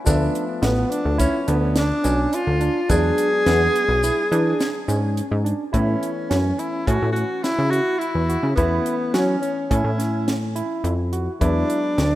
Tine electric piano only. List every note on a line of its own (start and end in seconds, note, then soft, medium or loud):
0.06 0.43 D4 medium
0.62 1.00 B3 medium
1.18 1.37 E4 medium
1.47 1.85 D4 medium
2.04 2.41 C#4 medium
2.61 2.80 D4 medium
2.89 3.27 D4 medium
3.46 3.83 B3 medium
4.04 4.22 E4 medium
4.32 4.69 D4 medium
4.88 5.25 C#4 medium
5.45 5.63 D4 medium
5.73 6.10 E4 medium
6.30 6.67 C#4 medium
6.87 7.06 C#4 medium
7.15 7.52 C#4 medium
7.72 8.09 E4 medium
8.29 8.48 F#4 medium
8.58 8.95 E4 medium
9.14 9.51 C#4 medium
9.70 9.89 C#4 medium
9.98 10.35 C#4 medium
10.55 10.93 E4 medium
11.13 11.31 F#4 medium
11.41 11.78 E4 medium
11.98 12.15 D4 medium